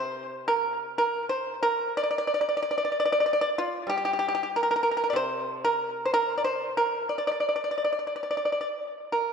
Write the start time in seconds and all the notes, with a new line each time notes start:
Already playing: C3 C5
0.48 A#4
0.98 A#4
1.29 C5
1.63 A#4
1.97 D5
2.03 D5
2.11 D5
2.18 D5
2.27 D5
2.34 D5
2.41 D5
2.49 D5
2.57 D5
2.62 D5
2.71 D5
2.78 D5
2.85 D5
2.92 D5
3.00 D5
3.05 D5
3.12 D5
3.20 D5
3.26 D5
3.33 D5
3.41 D5
3.58 F4
3.87 G3 G4
3.97 G4
4.05 G4
4.13 G4
4.19 G4
4.28 G4
4.35 G4
4.43 G4
4.56 A#4
4.63 A#4
4.71 A#4
4.76 A#4
4.83 A#4
4.91 A#4
4.97 A#4
5.04 A#4
5.10 C3 D5
5.16 C5
5.65 A#4
6.05 C5
6.14 A#4
6.38 D5
6.44 C5
6.77 A#4
7.09 D5
7.18 D5
7.27 D5
7.31 D5
7.40 D5
7.49 D5
7.56 D5
7.64 D5
7.71 D5
7.78 D5
7.85 D5
7.93 D5
7.99 D5
8.07 D5
8.16 D5
8.23 D5
8.31 D5
8.37 D5
8.45 D5
8.52 D5
8.61 D5
9.12 A#4